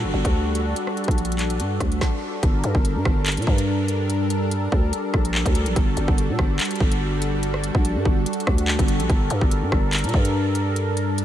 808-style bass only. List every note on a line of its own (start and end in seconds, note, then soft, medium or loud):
0.04 0.13 G1 loud
0.14 0.24 G1 loud
0.25 0.74 D2 loud
1.08 1.61 A#1 loud
1.60 1.79 G2 loud
1.80 2.00 D2 loud
2.43 2.63 G1 loud
2.64 2.74 G2 loud
2.75 2.97 G1 loud
2.96 3.05 G2 loud
3.05 3.39 G1 loud
3.37 3.47 A#2 loud
3.47 4.68 G2 loud
4.72 4.92 D2 loud
5.14 5.44 A#1 loud
5.46 5.68 D2 loud
5.66 5.76 A#1 loud
5.76 5.96 G1 loud
5.97 6.08 G1 loud
6.08 6.30 G1 loud
6.29 6.38 A#2 loud
6.39 6.59 G1 loud
6.80 7.71 G1 loud
7.75 7.97 A#1 loud
7.96 8.05 G2 loud
8.05 8.25 G1 loud
8.47 8.78 D2 loud
8.79 9.01 G1 loud
9.00 9.09 A#1 loud
9.10 9.30 G1 loud
9.30 9.41 G2 loud
9.41 9.64 G1 loud
9.62 9.72 G2 loud
9.72 10.05 G1 loud
10.04 10.13 A#2 loud
10.14 11.25 G2 loud